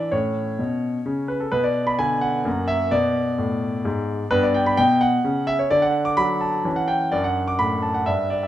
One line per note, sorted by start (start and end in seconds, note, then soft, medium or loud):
0.00 0.15 E3 soft
0.00 0.14 D4 soft
0.00 0.12 D5 medium
0.00 0.15 E5 soft
0.12 0.49 A2 soft
0.12 1.48 C#4 soft
0.12 1.29 C#5 medium
0.59 0.96 B2 soft
1.06 1.43 C#3 soft
1.28 1.40 B4 soft
1.40 1.52 A4 soft
1.52 1.90 B2 soft
1.52 2.42 B3 soft
1.52 1.64 B4 medium
1.64 1.87 D5 medium
1.87 1.99 B5 medium
1.99 2.37 D3 soft
1.99 2.22 G#5 medium
2.21 2.69 F#5 medium
2.45 2.82 F#2 soft
2.45 2.89 A#3 soft
2.68 2.92 E5 medium
2.91 3.29 B2 medium
2.91 4.28 B3 soft
2.91 4.31 D5 medium
3.38 3.76 A2 soft
3.85 4.22 G#2 medium
4.31 4.69 G2 medium
4.31 5.67 B3 soft
4.31 4.43 B4 medium
4.43 4.55 D5 medium
4.54 4.66 G5 medium
4.66 4.78 B5 medium
4.77 5.16 B2 medium
4.77 5.01 G5 medium
5.01 5.48 F#5 medium
5.24 5.62 C#3 medium
5.47 5.59 E5 medium
5.59 5.71 C#5 medium
5.71 6.09 D3 medium
5.71 6.61 D4 soft
5.71 5.83 D5 medium
5.82 6.06 F#5 medium
6.05 6.18 D6 medium
6.17 6.56 F#3 soft
6.17 6.41 B5 medium
6.41 6.77 A5 medium
6.65 7.03 E3 soft
6.65 7.09 C#4 soft
6.76 6.89 F#5 medium
6.88 7.12 G5 medium
7.12 7.50 F#2 medium
7.12 8.03 D4 soft
7.12 7.24 D5 medium
7.24 7.48 F#5 medium
7.48 7.60 D6 medium
7.59 7.98 A2 soft
7.59 7.83 B5 medium
7.82 7.95 A5 soft
7.94 8.07 F#5 medium
8.06 8.46 G2 soft
8.06 8.47 D4 soft
8.06 8.31 E5 medium
8.30 8.43 D5 medium
8.43 8.47 E5 soft